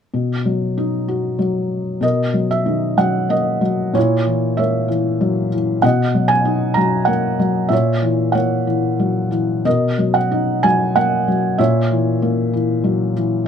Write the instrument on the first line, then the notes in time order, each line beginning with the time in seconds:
felt piano
0.14 B2
0.45 F#3
0.78 D#4
1.08 F#4
1.39 F#3
2.01 B2 A#4 D#5
2.34 F#3
2.51 E5
2.66 D#3
2.97 F#3 F#5
3.29 A#3 D#5
3.61 F#3
3.94 A#2 E4 C#5
4.27 E3
4.57 A#3 C#5 E5
4.88 E3
5.21 F#3
5.53 E3
5.82 B2 D#5 F#5
6.14 F#3
6.28 G#5
6.45 D#4
6.74 F#3 A#5
7.05 A#3 F#5
7.39 F#3
7.69 A#2 E5
7.73 C#5
8.02 E3
8.32 A#3 C#5 F#5
8.67 E3
8.99 F#3
9.31 E3
9.65 B2 A#4 D#5
9.98 F#3
10.14 F#5
10.31 D#4
10.63 F#3 G#5
10.95 A#3 F#5
11.28 F#3
11.58 A#2 C#5 E5
11.91 E3
12.22 A#3
12.53 E3
12.84 F#3
13.16 E3